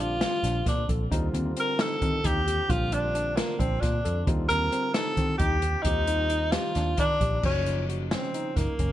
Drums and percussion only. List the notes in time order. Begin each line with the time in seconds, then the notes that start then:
0.21 snare, closed hi-hat
0.44 snare, closed hi-hat
0.66 kick, snare, closed hi-hat
0.89 kick, closed hi-hat
1.12 kick, closed hi-hat
1.34 closed hi-hat
1.57 closed hi-hat
1.79 snare, closed hi-hat
2.02 kick, closed hi-hat
2.24 kick, closed hi-hat
2.48 closed hi-hat
2.70 kick, closed hi-hat
2.92 closed hi-hat
3.15 closed hi-hat
3.37 snare, closed hi-hat
3.60 kick, closed hi-hat
3.82 kick, snare, closed hi-hat
4.05 closed hi-hat
4.27 kick, closed hi-hat
4.50 closed hi-hat
4.72 closed hi-hat
4.94 snare, closed hi-hat
5.17 kick, closed hi-hat
5.39 kick, closed hi-hat
5.62 closed hi-hat
5.85 kick, closed hi-hat
6.07 closed hi-hat
6.30 closed hi-hat
6.52 snare, closed hi-hat
6.75 snare, closed hi-hat
6.97 kick, closed hi-hat
7.21 kick, closed hi-hat
7.43 kick, crash
7.66 closed hi-hat
7.90 closed hi-hat
8.11 snare, closed hi-hat
8.34 closed hi-hat
8.57 kick, snare, closed hi-hat
8.79 kick, closed hi-hat